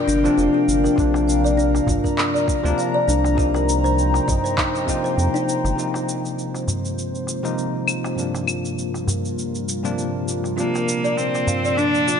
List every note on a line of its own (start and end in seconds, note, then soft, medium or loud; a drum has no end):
0.00 0.19 C3 medium
0.00 0.20 F3 medium
0.00 0.21 A#3 medium
0.00 0.21 D4 medium
0.00 3.34 D4 medium
0.00 0.95 A#4 medium
0.00 3.34 F5 medium
0.00 0.95 G5 medium
0.08 0.29 G1 medium
0.08 0.36 D4 loud
0.08 cabasa medium
0.23 0.34 C3 loud
0.23 0.34 F3 medium
0.23 0.35 A#3 medium
0.23 0.35 D4 loud
0.23 darbuka tek soft
0.23 cabasa soft
0.38 0.49 F1 medium
0.38 0.53 F4 loud
0.38 cabasa soft
0.54 0.67 G4 medium
0.68 0.89 G1 medium
0.68 cabasa medium
0.84 0.98 A#4 medium
0.84 darbuka ka medium
0.84 cabasa soft
0.96 1.80 A#1 loud
0.96 2.59 C3 medium
0.96 2.60 F3 medium
0.96 2.61 A#3 medium
0.96 3.36 A#4 medium
0.96 5.74 A#5 medium
0.96 kick loud
0.96 cabasa soft
1.00 2.62 D4 medium
1.14 darbuka tek medium
1.14 cabasa soft
1.27 1.43 F5 medium
1.27 cabasa medium
1.44 1.57 D5 medium
1.44 darbuka ka soft
1.44 cabasa soft
1.57 1.86 D4 loud
1.57 cabasa soft
1.75 darbuka tek medium
1.75 cabasa soft
1.87 1.99 G#1 medium
1.87 2.03 F4 medium
1.87 kick loud
1.87 darbuka dum medium
1.87 cabasa medium
2.04 2.17 A#4 medium
2.04 kick medium
2.04 cabasa soft
2.18 clap medium
2.18 cabasa soft
2.34 2.76 D5 medium
2.34 cabasa soft
2.48 kick medium
2.48 darbuka ka medium
2.48 cabasa medium
2.63 2.73 D2 loud
2.63 2.74 C3 medium
2.63 2.74 F3 medium
2.63 2.74 A#3 medium
2.63 2.75 D4 loud
2.63 darbuka ka soft
2.63 cabasa soft
2.78 2.94 F5 medium
2.78 cabasa soft
2.94 3.07 D5 medium
3.08 4.20 C2 medium
3.08 3.36 D4 medium
3.08 cabasa medium
3.24 darbuka tek medium
3.24 cabasa soft
3.35 4.84 C3 medium
3.35 4.85 F3 medium
3.35 4.85 A#3 medium
3.35 5.76 D#4 medium
3.35 3.53 G4 loud
3.35 5.76 C5 medium
3.35 5.76 G5 medium
3.35 kick loud
3.35 cabasa soft
3.40 4.86 D#4 medium
3.54 3.67 A#4 medium
3.54 darbuka tek medium
3.54 cabasa soft
3.69 cabasa medium
3.84 4.26 C5 medium
3.84 darbuka ka soft
3.84 cabasa soft
3.99 cabasa soft
4.14 darbuka tek medium
4.14 cabasa soft
4.28 4.39 A#1 medium
4.28 4.44 D#5 medium
4.28 kick medium
4.28 darbuka ka soft
4.28 darbuka dum medium
4.28 cabasa medium
4.44 4.57 C5 medium
4.44 cabasa soft
4.58 4.73 D#4 medium
4.58 kick loud
4.58 clap medium
4.58 cabasa soft
4.75 cabasa soft
4.85 5.73 C3 medium
4.85 5.74 F3 medium
4.85 5.75 A#3 medium
4.85 5.03 G5 medium
4.85 kick medium
4.85 cabasa medium
4.90 5.75 D#4 loud
5.03 5.12 C5 medium
5.03 darbuka tek soft
5.03 cabasa soft
5.18 5.29 F2 medium
5.18 cabasa soft
5.34 5.42 D#4 loud
5.34 cabasa soft
5.49 cabasa medium
5.64 5.73 G1 medium
5.64 darbuka ka medium
5.64 cabasa soft
5.75 7.39 C3 medium
5.75 8.16 D#3 medium
5.75 7.40 F3 medium
5.75 8.15 G#3 medium
5.75 7.41 A#3 medium
5.75 8.16 C4 medium
5.75 7.41 D#4 medium
5.75 12.20 F4 medium
5.75 8.16 C5 medium
5.75 cabasa soft
5.94 darbuka tek medium
5.94 cabasa soft
6.09 cabasa medium
6.25 darbuka ka soft
6.25 cabasa soft
6.39 cabasa soft
6.55 darbuka tek medium
6.55 cabasa soft
6.68 darbuka dum medium
6.68 cabasa medium
6.85 cabasa soft
6.98 cabasa soft
7.15 cabasa soft
7.27 darbuka ka medium
7.27 cabasa medium
7.43 7.54 C3 medium
7.43 7.54 F3 medium
7.43 7.54 A#3 medium
7.43 7.55 D#4 medium
7.43 darbuka ka soft
7.43 cabasa soft
7.58 cabasa soft
7.88 cabasa medium
7.88 claves medium
8.05 darbuka tek medium
8.05 cabasa soft
8.15 9.79 G2 medium
8.15 12.20 A#2 medium
8.15 9.80 C3 medium
8.15 9.80 F3 medium
8.15 10.56 G3 medium
8.15 12.20 A#3 medium
8.15 9.81 A#3 medium
8.15 12.20 A#4 medium
8.15 cabasa soft
8.20 9.81 D4 medium
8.35 darbuka tek medium
8.35 cabasa soft
8.48 cabasa medium
8.48 claves soft
8.65 cabasa soft
8.79 cabasa soft
8.94 darbuka tek medium
8.94 cabasa soft
9.07 darbuka dum medium
9.07 cabasa medium
9.25 cabasa soft
9.39 cabasa soft
9.55 cabasa soft
9.69 cabasa medium
9.83 9.94 G2 medium
9.83 9.94 C3 medium
9.83 9.94 F3 medium
9.83 9.95 A#3 medium
9.83 9.95 D4 medium
9.83 darbuka tek soft
9.83 cabasa soft
9.98 cabasa soft
10.28 cabasa medium
10.44 darbuka ka medium
10.44 cabasa soft
10.56 12.20 C3 medium
10.56 12.20 F3 medium
10.56 11.19 A#3 medium
10.56 12.20 A#3 medium
10.56 10.73 F4 medium
10.56 cabasa soft
10.60 12.20 D4 medium
10.74 10.87 A#4 medium
10.74 darbuka tek medium
10.74 cabasa soft
10.88 cabasa medium
11.04 11.46 D5 medium
11.04 darbuka ka soft
11.04 cabasa soft
11.17 11.79 C4 medium
11.17 cabasa soft
11.35 darbuka tek medium
11.35 cabasa soft
11.47 11.64 F5 medium
11.47 darbuka dum medium
11.47 cabasa medium
11.64 11.77 D5 medium
11.64 cabasa soft
11.77 12.20 D4 loud
11.77 12.06 D4 medium
11.77 cabasa soft
11.95 cabasa soft
12.08 12.20 F4 loud
12.08 darbuka ka medium
12.08 cabasa medium